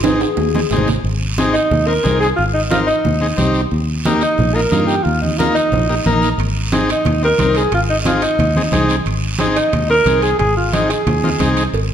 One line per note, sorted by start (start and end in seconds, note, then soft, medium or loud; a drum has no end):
0.00 0.24 G#1 loud
0.00 high timbale medium
0.04 0.22 C4 medium
0.04 0.23 D#4 medium
0.04 0.22 D#4 medium
0.04 0.22 G#4 medium
0.04 high conga medium
0.04 short guiro medium
0.21 0.88 G#4 medium
0.21 high timbale medium
0.21 short guiro medium
0.37 0.64 D#2 medium
0.37 high conga soft
0.37 low timbale medium
0.37 long guiro medium
0.54 0.60 C4 medium
0.54 0.61 D#4 medium
0.54 0.61 G#4 medium
0.54 high conga medium
0.54 low timbale medium
0.71 0.97 G#1 medium
0.71 0.89 C4 medium
0.71 0.89 D#4 medium
0.71 0.89 G#4 medium
0.71 low timbale medium
0.71 short guiro medium
0.76 low conga medium
0.87 low conga medium
0.87 low timbale medium
0.87 short guiro medium
1.04 1.58 G#1 medium
1.04 high conga soft
1.04 long guiro medium
1.38 1.55 C4 medium
1.38 1.55 D#4 medium
1.38 1.56 G#4 loud
1.38 high conga medium
1.38 short guiro medium
1.53 1.89 D#4 medium
1.53 short guiro medium
1.71 1.98 D#2 loud
1.71 high conga soft
1.71 low conga medium
1.71 long guiro medium
1.87 1.93 C4 medium
1.87 1.93 D#4 medium
1.87 2.20 A#4 loud
1.87 1.94 A#4 medium
2.03 2.32 C2 medium
2.03 2.27 C4 medium
2.03 2.27 D#4 medium
2.03 2.28 G#4 medium
2.03 high conga medium
2.03 short guiro medium
2.20 2.28 G#4 medium
2.20 short guiro medium
2.36 2.92 G#1 medium
2.36 2.44 F4 medium
2.36 high conga soft
2.36 long guiro medium
2.54 2.62 D#4 medium
2.70 2.88 C4 medium
2.70 2.89 D#4 medium
2.70 2.79 F4 medium
2.70 2.89 A#4 medium
2.70 high conga medium
2.70 short guiro medium
2.87 3.50 D#4 medium
2.87 short guiro medium
3.05 3.32 D#2 loud
3.05 high conga soft
3.05 low conga medium
3.05 long guiro medium
3.21 3.27 C4 medium
3.21 3.27 D#4 medium
3.21 3.27 G#4 medium
3.37 3.65 C2 loud
3.37 3.61 C4 medium
3.37 3.61 D#4 medium
3.37 3.61 G4 medium
3.37 high conga medium
3.37 short guiro medium
3.54 short guiro medium
3.71 4.25 D#2 medium
3.71 high conga soft
3.71 long guiro medium
4.04 4.23 A#3 medium
4.04 4.23 D#4 medium
4.04 4.23 G4 loud
4.04 high conga medium
4.04 short guiro medium
4.21 4.56 D#4 medium
4.21 short guiro medium
4.38 4.65 A#1 loud
4.38 high conga soft
4.38 low conga medium
4.38 long guiro medium
4.55 4.61 A#3 medium
4.55 4.61 D#4 medium
4.55 4.61 F4 medium
4.55 4.86 A#4 loud
4.71 4.99 G2 medium
4.71 4.95 A#3 medium
4.71 4.95 D#4 medium
4.71 4.96 F4 medium
4.71 high conga medium
4.71 short guiro medium
4.87 5.05 G4 medium
4.87 short guiro medium
5.03 5.59 D#2 medium
5.03 5.21 F4 medium
5.03 high conga soft
5.03 long guiro medium
5.21 5.39 D#4 medium
5.21 high conga medium
5.38 5.56 A#3 medium
5.38 5.56 D#4 medium
5.38 5.54 F4 medium
5.38 5.57 A#4 medium
5.38 high conga medium
5.38 short guiro medium
5.55 6.18 D#4 medium
5.55 short guiro medium
5.72 5.99 A#1 medium
5.72 high conga soft
5.72 low conga medium
5.72 long guiro medium
5.89 5.95 A#3 medium
5.89 5.95 D#4 medium
5.89 5.95 G4 medium
6.06 6.32 A#1 medium
6.06 6.29 A#3 medium
6.06 6.29 D#4 medium
6.06 6.30 A#4 medium
6.06 high conga medium
6.06 short guiro medium
6.22 short guiro medium
6.38 6.92 G#1 medium
6.38 high conga soft
6.38 high timbale medium
6.38 long guiro medium
6.72 6.90 C4 medium
6.72 6.90 D#4 medium
6.72 6.90 G#4 medium
6.72 high conga medium
6.72 high timbale medium
6.72 short guiro medium
6.89 7.22 D#4 medium
6.89 high timbale medium
6.89 short guiro medium
7.05 7.32 D#2 loud
7.05 high conga soft
7.05 low conga medium
7.05 high timbale medium
7.05 long guiro medium
7.23 7.28 C4 medium
7.23 7.29 D#4 medium
7.23 7.29 G4 medium
7.23 7.58 A#4 loud
7.38 7.66 C2 medium
7.38 7.63 C4 medium
7.38 7.63 D#4 medium
7.38 7.63 A#4 medium
7.38 high conga medium
7.38 high timbale medium
7.38 short guiro medium
7.55 7.73 G#4 medium
7.55 high timbale medium
7.55 short guiro medium
7.72 8.26 G#1 medium
7.72 7.81 F4 medium
7.72 high conga soft
7.72 high timbale medium
7.72 long guiro medium
7.90 7.97 D#4 medium
8.05 8.23 C4 medium
8.05 8.24 D#4 medium
8.05 8.22 F4 medium
8.05 8.24 G#4 medium
8.05 high conga medium
8.05 high timbale medium
8.05 short guiro medium
8.22 8.86 D#4 medium
8.22 high timbale medium
8.22 short guiro medium
8.39 8.66 D#2 medium
8.39 high conga soft
8.39 low conga medium
8.39 high timbale medium
8.39 long guiro medium
8.56 8.62 C4 medium
8.56 8.62 D#4 medium
8.56 8.62 G#4 medium
8.56 high conga medium
8.72 8.99 C2 loud
8.72 8.96 C4 medium
8.72 8.96 D#4 medium
8.72 8.96 G#4 medium
8.72 high conga medium
8.72 low conga medium
8.72 high timbale medium
8.72 short guiro medium
8.89 high timbale medium
8.89 short guiro medium
9.05 9.59 G#1 medium
9.05 high conga soft
9.05 high timbale medium
9.05 long guiro medium
9.39 9.57 C4 medium
9.39 9.57 D#4 medium
9.39 9.58 G#4 medium
9.39 high conga medium
9.39 high timbale medium
9.39 short guiro medium
9.56 9.87 D#4 medium
9.56 high timbale medium
9.56 short guiro medium
9.73 10.00 D#2 medium
9.73 high conga soft
9.73 low conga medium
9.73 high timbale medium
9.73 long guiro medium
9.89 9.95 C4 medium
9.89 9.96 D#4 medium
9.89 9.96 A#4 medium
9.89 10.21 A#4 loud
10.06 10.33 C2 loud
10.06 10.30 C4 medium
10.06 10.30 D#4 medium
10.06 10.30 G#4 medium
10.06 high conga medium
10.06 high timbale medium
10.06 short guiro medium
10.22 10.38 G#4 medium
10.22 high timbale medium
10.22 short guiro medium
10.39 10.93 G#1 loud
10.39 10.55 G#4 loud
10.39 high conga soft
10.39 low conga medium
10.39 high timbale medium
10.39 long guiro medium
10.57 10.75 F4 medium
10.73 10.91 C4 medium
10.73 10.92 D#4 medium
10.73 10.91 D#4 medium
10.73 10.91 G#4 medium
10.73 high conga medium
10.73 high timbale medium
10.73 short guiro medium
10.90 11.57 G#4 medium
10.90 high timbale medium
10.90 short guiro medium
11.07 11.33 D#2 medium
11.07 high conga soft
11.07 low conga medium
11.07 high timbale medium
11.07 long guiro medium
11.23 11.30 C4 medium
11.23 11.30 D#4 medium
11.23 11.30 F4 medium
11.23 high conga medium
11.40 11.67 C2 loud
11.40 11.63 C4 medium
11.40 11.63 D#4 medium
11.40 11.64 G#4 medium
11.40 high conga medium
11.40 low conga medium
11.40 high timbale medium
11.40 short guiro medium
11.57 high timbale medium
11.57 short guiro medium
11.73 11.94 G#1 medium
11.73 cowbell loud
11.73 high conga soft
11.73 long guiro medium